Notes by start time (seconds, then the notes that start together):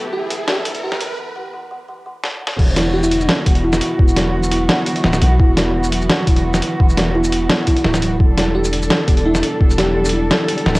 Already playing: E1 D3 B3 E4 A4 B4, riser
0.13 E3 G4
0.31 D3, closed hi-hat
0.48 E3 G4, snare
0.65 E1 D3, closed hi-hat
0.75 closed hi-hat
0.83 E3 G4
0.92 snare
1.01 D3, closed hi-hat
1.19 E3
1.36 E3
1.53 E3
1.71 E3
1.88 E3
2.06 E3
2.24 E3, snare
2.41 E3
2.47 snare
2.58 E1 E3 B3 F#4, kick, crash
2.76 E4, snare, closed hi-hat
2.94 E3 G4
3.03 E4, shaker
3.11 D3, closed hi-hat
3.20 shaker
3.29 E3, snare
3.46 E1 B3, kick, closed hi-hat
3.55 closed hi-hat
3.64 E4
3.73 snare, shaker
3.81 B2, closed hi-hat
3.99 E1 B3, kick
4.08 shaker
4.16 F#3, snare, closed hi-hat
4.34 E3
4.43 shaker
4.51 E4, closed hi-hat
4.69 E3, snare
4.86 D3, closed hi-hat
4.96 closed hi-hat
5.04 D1 E3, snare
5.13 snare, shaker
5.21 B1 B3, closed hi-hat
5.39 E1 E4, kick
5.57 B2, snare, closed hi-hat
5.75 B3
5.83 shaker
5.92 F#3, closed hi-hat
6.01 shaker
6.09 E3, snare
6.27 E1 E4, kick, closed hi-hat
6.36 closed hi-hat
6.45 E3
6.54 snare, shaker
6.62 D3, closed hi-hat
6.80 E1 E3, kick
6.89 shaker
6.97 B3, snare, closed hi-hat
7.15 E4
7.24 shaker
7.32 B2, closed hi-hat
7.50 B3, snare
7.67 E4, kick, closed hi-hat
7.77 closed hi-hat
7.85 D1 E4, snare
7.94 snare, shaker
8.02 F#3, closed hi-hat
8.20 E1 E3 G3 D4 A4, kick
8.38 E4, snare, closed hi-hat
8.55 E3 G4
8.65 shaker
8.73 D3, closed hi-hat
8.82 shaker
8.90 E3, snare
9.08 E1 B3, kick, closed hi-hat
9.17 closed hi-hat
9.25 E4
9.35 snare, shaker
9.43 B2, closed hi-hat
9.61 E1 B3, kick
9.70 shaker
9.78 F#3 G4, snare, closed hi-hat
9.96 E3
10.05 shaker
10.09 closed hi-hat
10.13 E4
10.31 E3, snare
10.48 D3, closed hi-hat
10.58 closed hi-hat
10.66 D1 E3, snare
10.75 snare, shaker